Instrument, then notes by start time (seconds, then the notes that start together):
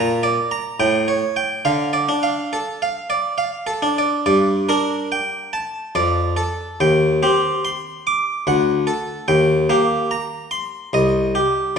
harpsichord
Already playing: A#2 A#5
0.23 D5
0.51 A#5
0.80 A2 G5
1.08 C#5
1.36 G5
1.65 D3 F5
1.93 D5
2.09 D4
2.23 F5
2.53 A4
2.82 F5
3.10 D5
3.38 F5
3.67 A4
3.82 D4
3.98 D5
4.26 G2 D5
4.69 D4 A#4
5.12 G5
5.53 A5
5.95 F2 D5
6.37 A4
6.80 D#2 G5
7.23 C4 G4
7.65 C6
8.07 D6
8.47 D2 F#5
8.87 A4
9.28 D#2 G5
9.70 A#3 G4
10.11 A#5
10.51 C6
10.93 C2 D#5
11.35 G4